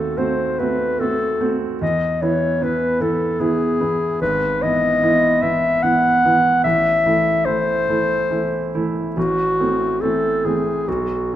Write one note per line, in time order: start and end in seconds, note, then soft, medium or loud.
0.00 1.84 D#2 soft
0.00 0.13 A3 soft
0.00 0.13 C4 soft
0.00 0.14 F#4 soft
0.00 0.19 A4 soft
0.17 0.55 A3 soft
0.17 0.55 C4 soft
0.17 0.56 F#4 soft
0.17 0.60 C5 medium
0.59 0.97 A3 soft
0.59 0.97 C4 soft
0.59 0.97 F#4 soft
0.59 1.01 B4 soft
1.00 1.37 A3 soft
1.00 1.37 C4 soft
1.00 1.38 F#4 soft
1.00 1.55 A4 medium
1.41 1.77 A3 soft
1.41 1.77 C4 soft
1.41 1.78 F#4 soft
1.81 2.21 E2 soft
1.81 2.23 D#5 medium
2.22 2.58 E3 soft
2.22 2.58 B3 soft
2.22 2.58 E4 soft
2.22 2.65 C#5 medium
2.61 2.97 E3 soft
2.61 2.97 B3 soft
2.61 2.97 E4 soft
2.61 3.03 B4 medium
3.00 3.36 E3 soft
3.00 3.36 B3 soft
3.00 3.36 E4 soft
3.00 3.42 A4 medium
3.40 3.76 E3 soft
3.40 3.76 B3 soft
3.40 3.77 E4 soft
3.40 4.21 G#4 medium
3.80 4.17 E3 soft
3.80 4.17 B3 soft
3.80 4.17 E4 soft
4.21 4.61 G#1 soft
4.21 4.64 B4 medium
4.62 4.98 E3 soft
4.62 4.98 B3 soft
4.62 4.98 E4 soft
4.62 5.43 D#5 medium
5.02 5.38 E3 soft
5.02 5.38 B3 soft
5.02 5.38 E4 soft
5.42 5.78 E3 soft
5.42 5.79 B3 soft
5.42 5.79 E4 soft
5.42 5.84 E5 medium
5.83 6.20 E3 soft
5.83 6.20 B3 soft
5.83 6.20 E4 soft
5.83 6.63 F#5 medium
6.25 6.61 E3 soft
6.25 6.61 B3 soft
6.25 6.61 E4 soft
6.64 7.04 A1 soft
6.64 7.47 E5 medium
7.06 7.42 E3 soft
7.06 7.42 A3 soft
7.06 7.42 E4 soft
7.45 7.84 E3 soft
7.45 7.84 A3 soft
7.45 7.84 E4 soft
7.45 8.88 C5 medium
7.89 8.27 E3 soft
7.89 8.27 A3 soft
7.89 8.27 E4 soft
8.30 8.69 E3 soft
8.30 8.70 A3 soft
8.30 8.70 E4 soft
8.74 9.13 E3 soft
8.74 9.13 A3 soft
8.74 9.13 E4 soft
9.16 9.58 A1 soft
9.16 10.03 F#4 medium
9.59 9.97 E3 soft
9.59 9.98 A3 soft
9.59 9.98 C4 soft
10.01 10.40 E3 soft
10.01 10.41 A3 soft
10.01 10.41 C4 soft
10.01 10.47 A4 medium
10.45 10.83 E3 soft
10.45 10.83 A3 soft
10.45 10.84 C4 soft
10.45 10.89 G#4 medium
10.88 11.31 B1 soft
10.88 11.35 F#4 soft